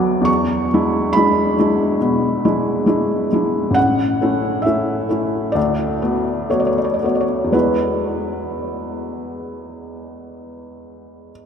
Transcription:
0.00 0.30 D2 medium
0.00 0.30 F#3 medium
0.00 0.30 B3 medium
0.00 0.30 F#4 medium
0.00 0.30 G#5 medium
0.00 0.30 A5 medium
0.00 0.29 B5 medium
0.00 0.27 D6 loud
0.21 0.67 E2 medium
0.21 1.14 C#6 medium
0.74 1.12 G#3 soft
0.74 1.12 D4 soft
0.74 1.13 E4 medium
1.13 1.54 G#3 soft
1.13 3.75 B5 loud
1.17 1.55 D4 soft
1.17 1.55 E4 soft
1.59 1.97 G#3 soft
1.59 1.97 D4 soft
1.59 1.97 E4 soft
2.01 2.43 B2 medium
2.45 2.84 G#3 soft
2.45 2.84 D4 soft
2.45 2.84 E4 medium
2.86 3.27 G#3 soft
2.86 3.27 D4 soft
2.86 3.27 E4 medium
3.33 3.73 G#3 soft
3.33 3.73 D4 soft
3.33 3.73 E4 soft
3.71 4.17 A1 medium
3.71 4.66 F#5 medium
4.21 4.62 A3 soft
4.21 4.63 C#4 soft
4.21 4.63 E4 soft
4.62 5.06 A3 soft
4.62 5.06 C#4 soft
4.62 5.54 E5 medium
4.66 5.07 E4 soft
5.09 5.51 A3 soft
5.09 5.51 C#4 soft
5.09 5.52 E4 soft
5.52 6.01 D2 medium
5.52 6.49 D5 medium
6.02 6.47 A3 soft
6.02 6.47 B3 soft
6.02 6.47 F#4 soft
6.50 6.97 A3 soft
6.50 6.97 B3 soft
6.50 6.97 F#4 soft
6.50 6.60 C#5 medium
6.60 6.68 D5 medium
6.67 6.76 C#5 medium
6.78 6.86 D5 medium
6.84 6.94 C#5 soft
6.94 7.03 D5 medium
7.03 7.50 A3 soft
7.03 7.51 B3 soft
7.03 7.51 F#4 soft
7.03 7.13 C#5 soft
7.15 7.23 D5 soft
7.21 7.53 C#5 medium
7.44 11.46 E2 soft
7.52 11.46 G#3 soft
7.52 11.46 B3 soft
7.52 11.46 E4 soft
7.52 11.30 B4 medium

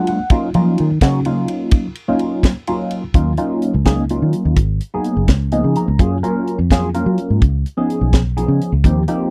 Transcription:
0.00 0.18 F#3 medium
0.00 0.18 G#3 medium
0.00 0.18 A#3 medium
0.00 0.18 D4 medium
0.00 0.18 F4 medium
0.07 0.30 F#5 medium
0.07 ride medium
0.30 0.48 F#3 medium
0.30 0.48 A#3 medium
0.30 0.48 C#4 medium
0.30 0.48 D#4 medium
0.30 0.48 F4 loud
0.30 kick loud
0.30 ride medium
0.54 0.77 F3 loud
0.54 0.89 F#3 medium
0.54 0.89 A#3 medium
0.54 0.89 C#4 medium
0.54 0.89 D#4 medium
0.54 0.89 F4 medium
0.54 ride medium
0.78 1.02 D#3 medium
0.78 ride medium
1.01 1.46 C#3 medium
1.01 1.19 F#3 medium
1.01 1.19 A#3 medium
1.01 1.19 C#4 medium
1.01 1.19 D#4 medium
1.01 1.19 F#4 loud
1.01 kick medium
1.01 snare loud
1.01 ride medium
1.25 1.86 F#3 medium
1.25 1.86 A#3 medium
1.25 1.86 C#4 medium
1.25 1.86 D#4 medium
1.25 1.86 F4 medium
1.25 ride medium
1.48 ride medium
1.71 kick loud
1.71 ride medium
1.95 ride medium
2.08 2.51 F#3 medium
2.08 2.52 A#3 medium
2.08 2.52 C#4 medium
2.08 2.52 D#4 medium
2.08 2.52 F4 loud
2.19 ride medium
2.43 kick medium
2.43 snare loud
2.43 ride medium
2.67 3.02 F#3 medium
2.67 3.02 A#3 medium
2.67 3.02 C#4 medium
2.67 3.02 D#4 medium
2.67 3.02 F4 medium
2.67 ride medium
2.91 ride medium
3.14 3.36 D#2 medium
3.14 3.32 F#3 medium
3.14 3.32 A#3 medium
3.14 3.32 C#4 medium
3.14 3.32 D#4 medium
3.14 3.32 F4 medium
3.14 kick loud
3.14 closed hi-hat medium
3.37 3.73 F#3 medium
3.37 3.73 A#3 medium
3.37 3.73 C#4 medium
3.37 3.73 D#4 medium
3.37 3.73 F4 loud
3.37 closed hi-hat medium
3.62 closed hi-hat medium
3.74 4.18 C#2 medium
3.85 4.03 F#3 medium
3.85 4.03 A#3 medium
3.85 4.03 C#4 medium
3.85 4.03 D#4 medium
3.85 4.03 G#4 loud
3.85 kick medium
3.85 snare medium
3.85 closed hi-hat medium
4.09 4.57 F#3 medium
4.09 4.57 A#3 medium
4.09 4.57 C#4 medium
4.09 4.57 D#4 medium
4.09 4.57 F4 medium
4.09 closed hi-hat medium
4.22 4.33 D#3 medium
4.33 closed hi-hat medium
4.45 4.56 D#2 medium
4.56 4.79 G#1 medium
4.56 kick medium
4.56 closed hi-hat medium
4.80 closed hi-hat medium
4.94 5.29 F#3 medium
4.94 5.29 A#3 medium
4.94 5.29 B3 medium
4.94 5.29 D#4 medium
4.94 5.29 G#4 medium
5.04 closed hi-hat medium
5.17 5.27 F#1 medium
5.28 5.61 C#2 medium
5.28 kick medium
5.28 snare medium
5.28 closed hi-hat medium
5.52 5.87 F3 medium
5.52 5.87 A#3 medium
5.52 5.87 B3 medium
5.52 5.87 D#4 medium
5.52 5.87 G#4 medium
5.52 5.74 D#5 medium
5.52 closed hi-hat medium
5.64 5.75 C#3 medium
5.75 5.98 A#5 medium
5.75 closed hi-hat medium
5.88 5.99 C#2 medium
5.99 6.21 F#2 medium
5.99 6.17 F#3 medium
5.99 6.17 A#3 medium
5.99 6.17 C#4 medium
5.99 6.17 F4 medium
5.99 6.17 G#4 medium
5.99 kick loud
5.99 closed hi-hat medium
6.23 6.58 F#3 medium
6.23 6.58 A#3 medium
6.23 6.58 C#4 medium
6.23 6.58 F4 medium
6.23 6.58 A#4 loud
6.23 closed hi-hat medium
6.47 closed hi-hat soft
6.59 7.03 F2 medium
6.71 6.88 F#3 medium
6.71 6.88 A#3 medium
6.71 6.88 C#4 medium
6.71 6.88 F4 medium
6.71 6.88 G#4 medium
6.71 kick medium
6.71 snare medium
6.71 closed hi-hat medium
6.94 7.42 F#3 medium
6.94 7.42 A#3 medium
6.94 7.42 C#4 medium
6.94 7.42 F4 medium
6.94 7.42 A#4 medium
6.94 closed hi-hat medium
7.06 7.17 F#3 medium
7.18 closed hi-hat medium
7.30 7.41 G#2 medium
7.42 7.64 C#2 medium
7.42 kick loud
7.42 closed hi-hat medium
7.66 closed hi-hat medium
7.77 8.21 F3 medium
7.77 8.21 B3 medium
7.77 8.21 C#4 medium
7.77 8.21 D#4 medium
7.77 8.21 G#4 medium
7.90 closed hi-hat medium
8.01 8.45 B1 medium
8.13 kick medium
8.13 snare medium
8.13 closed hi-hat medium
8.37 8.71 F3 medium
8.37 8.72 B3 medium
8.37 8.71 C#4 medium
8.37 8.71 D#4 medium
8.37 8.71 G#4 medium
8.37 closed hi-hat medium
8.48 8.59 C#3 medium
8.61 closed hi-hat medium
8.72 8.83 C#2 medium
8.84 9.06 D#2 medium
8.84 9.02 F3 medium
8.84 9.02 A#3 medium
8.84 9.02 C4 medium
8.84 9.02 D#4 medium
8.84 9.02 G4 medium
8.84 kick medium
8.84 closed hi-hat medium
9.08 9.30 F3 medium
9.08 9.30 A#3 medium
9.08 9.30 C4 medium
9.08 9.30 D#4 medium
9.08 9.30 G4 loud
9.08 closed hi-hat medium

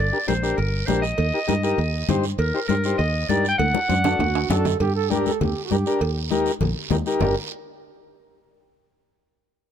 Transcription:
0.00 0.10 G1 loud
0.00 0.26 D5 medium
0.13 0.18 D4 medium
0.13 0.18 G4 medium
0.13 0.19 A#4 medium
0.27 0.52 A#1 medium
0.27 0.33 D4 medium
0.27 0.33 G4 medium
0.27 0.33 A#4 medium
0.27 0.56 C5 medium
0.27 cowbell medium
0.27 high conga medium
0.27 short guiro medium
0.43 0.59 D4 medium
0.43 0.59 G4 medium
0.43 0.59 A#4 medium
0.43 short guiro medium
0.57 0.82 G1 loud
0.57 0.88 A#4 medium
0.57 cowbell medium
0.57 high conga soft
0.57 long guiro medium
0.86 1.12 A#1 medium
0.86 1.04 D4 medium
0.86 1.04 G4 medium
0.86 1.04 A#4 medium
0.86 1.01 C5 medium
0.86 cowbell medium
0.86 high conga medium
0.86 low timbale medium
0.86 short guiro medium
1.02 2.19 D#5 loud
1.02 short guiro medium
1.18 1.31 D#2 loud
1.18 cowbell loud
1.18 high conga soft
1.18 long guiro medium
1.33 1.39 D#4 medium
1.33 1.39 G4 medium
1.33 1.39 A#4 medium
1.47 1.73 G2 medium
1.47 1.53 D#4 medium
1.47 1.53 G4 medium
1.47 1.54 A#4 loud
1.47 cowbell medium
1.47 high conga medium
1.47 short guiro medium
1.63 1.79 D#4 medium
1.63 1.79 G4 medium
1.63 1.80 A#4 medium
1.63 short guiro medium
1.78 2.02 D#2 medium
1.78 cowbell medium
1.78 high conga soft
1.78 long guiro medium
2.08 2.33 G2 medium
2.08 2.25 D#4 medium
2.08 2.25 G4 medium
2.08 2.25 C5 loud
2.08 cowbell medium
2.08 high conga medium
2.08 low conga medium
2.08 low timbale medium
2.08 short guiro medium
2.24 short guiro medium
2.38 2.51 D#2 loud
2.38 2.67 A#4 medium
2.38 cowbell loud
2.38 high conga soft
2.38 long guiro medium
2.54 2.59 D#4 medium
2.54 2.60 G4 medium
2.54 2.60 C5 medium
2.68 2.93 G2 medium
2.68 2.75 D#4 medium
2.68 2.75 G4 medium
2.68 2.97 A#4 medium
2.68 2.75 C5 medium
2.68 cowbell medium
2.68 high conga medium
2.68 short guiro medium
2.84 3.00 D#4 medium
2.84 3.01 G4 medium
2.84 3.01 C5 medium
2.84 short guiro medium
2.98 3.23 D#2 loud
2.98 3.27 D#5 loud
2.98 cowbell medium
2.98 high conga soft
2.98 long guiro medium
3.29 3.53 G2 medium
3.29 3.45 D#4 medium
3.29 3.46 G4 medium
3.29 3.46 A#4 medium
3.29 3.48 D5 medium
3.29 cowbell medium
3.29 high conga medium
3.29 short guiro medium
3.45 3.58 G5 loud
3.45 short guiro medium
3.58 3.71 D2 medium
3.58 4.60 F#5 loud
3.58 cowbell loud
3.58 high conga medium
3.58 long guiro medium
3.74 3.79 D4 medium
3.74 3.80 F#4 medium
3.74 3.80 A4 medium
3.74 high conga loud
3.88 4.14 F#2 medium
3.88 3.94 D4 medium
3.88 4.22 D4 medium
3.88 3.95 F#4 medium
3.88 3.95 C5 medium
3.88 cowbell medium
3.88 high conga medium
3.88 short guiro medium
4.04 4.20 D4 medium
4.04 4.20 F#4 medium
4.04 4.21 A4 medium
4.04 low conga medium
4.04 high timbale loud
4.04 short guiro medium
4.19 4.43 D2 loud
4.19 4.50 F#4 medium
4.19 cowbell medium
4.19 low conga medium
4.19 high timbale medium
4.19 long guiro medium
4.35 high timbale medium
4.50 4.74 F#2 medium
4.50 4.66 D4 medium
4.50 4.66 F#4 medium
4.50 4.66 A4 medium
4.50 4.79 A4 loud
4.50 cowbell medium
4.50 low conga loud
4.50 low timbale medium
4.50 short guiro medium
4.65 low conga medium
4.65 low timbale medium
4.65 short guiro medium
4.80 5.28 G2 medium
4.80 4.95 G4 loud
4.80 cowbell loud
4.80 low conga medium
4.80 long guiro medium
4.96 5.13 A4 loud
5.10 5.31 D4 medium
5.10 5.32 G4 medium
5.10 5.28 G4 medium
5.10 5.32 A#4 medium
5.10 high conga medium
5.10 short guiro medium
5.26 5.43 A4 medium
5.26 high conga medium
5.26 short guiro medium
5.41 5.53 D2 medium
5.41 5.63 G4 medium
5.41 cowbell medium
5.41 low conga medium
5.41 long guiro medium
5.65 6.20 G4 medium
5.71 5.83 G2 medium
5.71 5.76 D4 medium
5.71 5.76 G4 medium
5.71 5.76 A#4 medium
5.71 high conga medium
5.71 short guiro medium
5.86 6.01 D4 medium
5.86 6.01 G4 medium
5.86 6.01 A#4 medium
5.86 short guiro medium
6.01 6.49 D#2 medium
6.01 cowbell loud
6.01 long guiro medium
6.30 6.52 D#4 medium
6.30 6.52 G4 medium
6.30 6.52 A#4 loud
6.30 high conga medium
6.30 short guiro medium
6.46 short guiro medium
6.61 6.73 A#1 medium
6.61 cowbell medium
6.61 low conga medium
6.61 long guiro medium
6.90 7.03 D#2 loud
6.90 6.96 D#4 medium
6.90 6.96 G4 medium
6.90 6.96 A#4 loud
6.90 high conga medium
6.90 low conga medium
6.90 low timbale medium
6.90 short guiro medium
7.06 7.21 D#4 medium
7.06 7.21 G4 medium
7.06 7.21 A#4 loud
7.06 short guiro medium
7.20 7.35 G1 medium
7.20 7.36 D4 medium
7.20 7.36 G4 medium
7.20 7.35 A#4 medium
7.20 7.36 A#4 loud
7.20 low conga medium
7.20 low timbale loud
7.20 long guiro medium

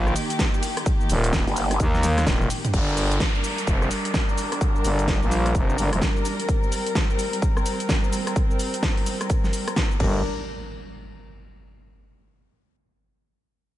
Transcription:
0.00 0.14 A#1 medium
0.00 2.70 D#3 medium
0.00 2.70 A#3 medium
0.00 2.70 G4 medium
0.07 cross-stick medium
0.07 shaker soft
0.16 open hi-hat loud
0.16 ride medium
0.16 shaker medium
0.30 closed hi-hat medium
0.30 shaker soft
0.39 kick loud
0.39 snare loud
0.39 closed hi-hat medium
0.39 ride medium
0.39 shaker soft
0.54 shaker soft
0.63 open hi-hat loud
0.63 ride medium
0.63 shaker medium
0.77 cross-stick medium
0.77 closed hi-hat medium
0.77 shaker soft
0.86 kick loud
0.86 closed hi-hat medium
0.86 ride medium
0.86 shaker soft
1.01 shaker soft
1.09 1.45 D#1 loud
1.09 open hi-hat loud
1.09 ride medium
1.09 shaker medium
1.24 closed hi-hat medium
1.24 shaker soft
1.33 kick loud
1.33 snare loud
1.33 closed hi-hat medium
1.33 ride medium
1.33 shaker medium
1.47 1.78 G1 medium
1.47 open hi-hat medium
1.47 shaker soft
1.56 open hi-hat loud
1.56 ride medium
1.56 shaker medium
1.71 cross-stick medium
1.71 closed hi-hat medium
1.71 shaker soft
1.80 2.25 D#2 medium
1.80 kick loud
1.80 closed hi-hat medium
1.80 ride medium
1.80 shaker soft
1.94 snare soft
1.94 shaker soft
2.03 open hi-hat loud
2.03 high tom medium
2.03 ride medium
2.03 shaker medium
2.18 cross-stick medium
2.18 snare medium
2.18 closed hi-hat medium
2.18 shaker soft
2.27 2.49 D#1 loud
2.27 kick loud
2.27 snare loud
2.27 closed hi-hat medium
2.27 ride medium
2.27 shaker soft
2.41 mid tom medium
2.41 shaker soft
2.50 open hi-hat loud
2.50 ride medium
2.50 shaker medium
2.65 closed hi-hat medium
2.65 mid tom medium
2.65 shaker soft
2.73 3.19 G1 loud
2.73 9.96 G3 medium
2.73 6.45 D4 medium
2.73 9.96 A#4 medium
2.73 kick loud
2.73 closed hi-hat medium
2.73 crash loud
2.73 downlifter medium
2.73 shaker soft
2.88 shaker soft
2.97 open hi-hat loud
2.97 shaker medium
3.11 closed hi-hat medium
3.11 shaker soft
3.20 kick loud
3.20 snare loud
3.20 closed hi-hat medium
3.20 shaker soft
3.35 shaker soft
3.44 open hi-hat loud
3.44 shaker medium
3.58 closed hi-hat medium
3.58 shaker soft
3.67 3.89 F1 medium
3.67 kick loud
3.67 closed hi-hat medium
3.67 shaker soft
3.82 cross-stick medium
3.82 shaker soft
3.91 open hi-hat loud
3.91 shaker medium
4.05 closed hi-hat medium
4.05 shaker soft
4.14 kick loud
4.14 snare loud
4.14 closed hi-hat medium
4.14 shaker soft
4.29 shaker soft
4.38 open hi-hat loud
4.38 shaker medium
4.52 cross-stick medium
4.52 closed hi-hat medium
4.52 shaker soft
4.61 kick loud
4.61 closed hi-hat medium
4.61 shaker soft
4.76 shaker soft
4.84 5.20 G1 loud
4.84 open hi-hat loud
4.84 shaker medium
4.99 closed hi-hat medium
4.99 shaker soft
5.08 kick loud
5.08 snare loud
5.08 closed hi-hat medium
5.08 shaker soft
5.22 5.53 A#1 loud
5.22 shaker soft
5.31 open hi-hat loud
5.31 shaker medium
5.46 cross-stick medium
5.46 closed hi-hat medium
5.46 shaker soft
5.55 5.77 F1 loud
5.55 kick loud
5.55 closed hi-hat medium
5.55 shaker soft
5.70 shaker soft
5.78 5.90 G1 medium
5.78 open hi-hat loud
5.78 shaker medium
5.93 6.00 F1 medium
5.93 cross-stick medium
5.93 closed hi-hat medium
5.93 shaker soft
6.02 kick loud
6.02 snare loud
6.02 closed hi-hat medium
6.02 shaker soft
6.16 shaker soft
6.25 open hi-hat loud
6.25 shaker medium
6.40 closed hi-hat medium
6.40 shaker soft
6.48 9.97 C4 medium
6.48 kick loud
6.48 closed hi-hat medium
6.48 shaker soft
6.63 shaker soft
6.72 open hi-hat loud
6.72 shaker medium
6.86 closed hi-hat medium
6.86 shaker soft
6.95 kick loud
6.95 snare loud
6.95 closed hi-hat medium
6.95 shaker soft
7.10 shaker soft
7.19 open hi-hat loud
7.19 shaker medium
7.33 closed hi-hat medium
7.33 shaker soft
7.42 kick loud
7.42 closed hi-hat medium
7.42 shaker soft
7.57 cross-stick medium
7.57 shaker soft
7.66 open hi-hat loud
7.66 shaker medium
7.80 closed hi-hat medium
7.80 shaker soft
7.89 kick loud
7.89 snare loud
7.89 closed hi-hat medium
7.89 shaker soft
8.04 shaker soft
8.13 open hi-hat loud
8.13 shaker medium
8.27 cross-stick medium
8.27 closed hi-hat medium
8.27 shaker soft
8.36 kick loud
8.36 closed hi-hat medium
8.36 shaker soft
8.51 shaker soft
8.59 open hi-hat loud
8.59 shaker medium
8.74 closed hi-hat medium
8.74 shaker soft
8.83 kick loud
8.83 snare loud
8.83 closed hi-hat medium
8.83 shaker soft
8.97 open hi-hat medium
8.97 shaker soft
9.06 open hi-hat loud
9.06 shaker medium
9.21 cross-stick medium
9.21 closed hi-hat medium
9.21 shaker soft
9.30 kick loud
9.30 closed hi-hat medium
9.30 shaker soft
9.44 snare soft
9.44 shaker soft
9.53 open hi-hat loud
9.53 shaker medium
9.68 cross-stick medium
9.68 closed hi-hat medium
9.68 shaker soft
9.76 kick loud
9.76 snare loud
9.76 closed hi-hat medium
9.76 shaker soft
9.91 shaker soft
10.00 10.22 G1 loud
10.00 10.22 G3 medium
10.00 10.22 D4 medium
10.00 10.22 A#4 medium
10.00 kick loud
10.00 crash medium
10.00 impact medium

